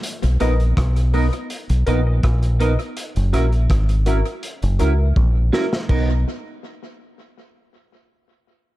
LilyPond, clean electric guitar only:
\new Staff \with { instrumentName = "Clean electric guitar" } { \time 4/4 \key b \major \tempo 4 = 82 r8 <b dis' ais'>8 r8 <b dis' ais'>8 r8 <b dis' ais'>8 r8 <b dis' ais'>8 | r8 <cis' e' ais'>8 r8 <cis' e' ais'>8 r8 <cis' e' ais'>8 r8 <cis' e' ais'>8 | <b dis' ais'>8 r2. r8 | }